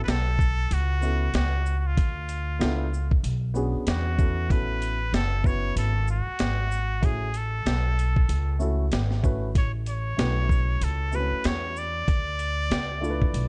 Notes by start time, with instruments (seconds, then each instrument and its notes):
0.04 upright bass B1, muted trumpet B4, closed hi-hat
0.08 muted trumpet A4, snare
0.39 kick, shaker
0.71 upright bass C#2, muted trumpet F#4, closed hi-hat
1.01 grand piano B3 C#4 E4 F#4 A4, shaker
1.34 upright bass C#2, muted trumpet F#4, snare, closed hi-hat
1.66 shaker
1.79 muted trumpet F#4
1.87 muted trumpet F4
1.97 upright bass D2, kick, closed hi-hat
2.29 closed hi-hat, shaker
2.59 upright bass C#2, grand piano B3 D4 E4 F4 A4, snare, closed hi-hat
2.94 shaker
3.11 kick
3.23 upright bass B1, closed hi-hat
3.54 grand piano B3 C#4 D4 F#4 G#4, shaker
3.74 muted upright bass stroke
3.87 upright bass E2, muted trumpet F#4, snare, closed hi-hat
4.17 grand piano B3 C#4 E4 F#4 A4, kick, shaker
4.49 upright bass A1, grand piano B3 C#4 E4 F#4 A4, muted trumpet B4, kick, closed hi-hat
4.82 closed hi-hat, shaker
5.13 upright bass F#1, muted trumpet A4, snare, closed hi-hat
5.43 grand piano B3 C#4 E4 F#4 B4, muted trumpet C#5, kick, shaker
5.76 upright bass G#1, muted trumpet A4, closed hi-hat
6.08 muted trumpet F#4, shaker
6.26 muted upright bass stroke
6.39 upright bass G#1, snare, closed hi-hat
6.71 shaker
7.01 upright bass A1, grand piano A3 C#4 E4 F#4 G#4, kick, closed hi-hat
7.05 muted trumpet G#4
7.34 muted trumpet A4, closed hi-hat, shaker
7.66 upright bass B1, snare, closed hi-hat
7.99 closed hi-hat, shaker
8.16 kick
8.29 upright bass C#2, closed hi-hat
8.59 grand piano A3 C#4 E4 F#4 A4, shaker
8.92 upright bass G#1, snare, closed hi-hat
9.11 snare
9.22 grand piano A3 C#4 E4 F#4 B4, kick, shaker
9.55 upright bass A1, muted trumpet C#5, kick, closed hi-hat
9.86 muted trumpet C#5, closed hi-hat, shaker
10.17 upright bass B1, grand piano A3 C#4 E4 F#4 B4, snare, closed hi-hat
10.49 kick, shaker
10.81 upright bass C#2, muted trumpet A4, closed hi-hat
11.12 grand piano A3 C4 E4 F#4 B4, muted trumpet B4, shaker
11.19 grand piano C#4
11.32 muted upright bass stroke
11.44 upright bass E2, muted trumpet C#5, snare, closed hi-hat
11.76 muted trumpet D5, shaker
12.08 upright bass D2, kick, closed hi-hat
12.39 closed hi-hat, shaker
12.70 upright bass C#2, snare, closed hi-hat
13.01 grand piano A3 D4 E4 F4 A4, shaker
13.10 grand piano B4
13.22 kick
13.34 upright bass B1, closed hi-hat